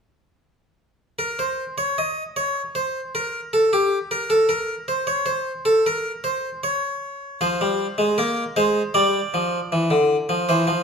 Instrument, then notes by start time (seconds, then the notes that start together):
harpsichord
1.19 A#4
1.39 C5
1.78 C#5
1.98 D#5
2.36 C#5
2.75 C5
3.15 A#4
3.53 A4
3.73 G4
4.11 A#4
4.30 A4
4.49 A#4
4.88 C5
5.07 C#5
5.26 C5
5.65 A4
5.86 A#4
6.24 C5
6.63 C#5
7.41 F3 C5
7.61 G3
7.98 G#3
8.18 A#3 A#4
8.56 G#3 C5
8.94 G3 D5
9.34 F3
9.72 E3
9.91 D3
10.29 F3
10.49 E3 C5
10.67 F3